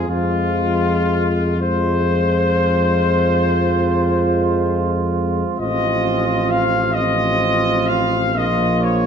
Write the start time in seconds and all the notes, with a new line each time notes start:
0.08 F2 F3 G#3 F4
1.59 F3 G#3 F4 C5
5.59 A1 F3 C4 F4 D#5
6.49 F5
6.92 F3 C4 F4 D#5
7.87 F5
8.34 A#1 F3 A#3 F4 D#5
8.82 C#5